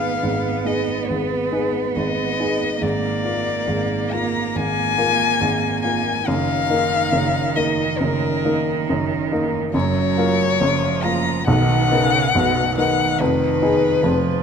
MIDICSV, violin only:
0, 0, Header, 1, 2, 480
1, 0, Start_track
1, 0, Key_signature, -6, "minor"
1, 0, Tempo, 862069
1, 1574, Time_signature, 4, 2, 24, 8
1, 3966, Tempo, 872093
1, 6846, Tempo, 848656
1, 8019, End_track
2, 0, Start_track
2, 0, Title_t, "Violin"
2, 0, Program_c, 0, 40
2, 0, Note_on_c, 0, 77, 78
2, 367, Note_on_c, 0, 75, 62
2, 376, Note_off_c, 0, 77, 0
2, 603, Note_on_c, 0, 71, 67
2, 612, Note_off_c, 0, 75, 0
2, 1087, Note_on_c, 0, 75, 77
2, 1096, Note_off_c, 0, 71, 0
2, 1565, Note_on_c, 0, 74, 82
2, 1574, Note_off_c, 0, 75, 0
2, 2296, Note_on_c, 0, 82, 81
2, 2304, Note_off_c, 0, 74, 0
2, 2537, Note_on_c, 0, 80, 98
2, 2546, Note_off_c, 0, 82, 0
2, 3239, Note_off_c, 0, 80, 0
2, 3242, Note_on_c, 0, 80, 80
2, 3487, Note_on_c, 0, 77, 104
2, 3496, Note_off_c, 0, 80, 0
2, 4204, Note_on_c, 0, 75, 76
2, 4212, Note_off_c, 0, 77, 0
2, 4441, Note_on_c, 0, 70, 82
2, 4450, Note_off_c, 0, 75, 0
2, 4932, Note_off_c, 0, 70, 0
2, 5405, Note_on_c, 0, 73, 99
2, 6115, Note_on_c, 0, 82, 90
2, 6123, Note_off_c, 0, 73, 0
2, 6353, Note_off_c, 0, 82, 0
2, 6357, Note_on_c, 0, 78, 106
2, 7070, Note_off_c, 0, 78, 0
2, 7082, Note_on_c, 0, 78, 94
2, 7328, Note_on_c, 0, 71, 99
2, 7337, Note_off_c, 0, 78, 0
2, 8019, Note_off_c, 0, 71, 0
2, 8019, End_track
0, 0, End_of_file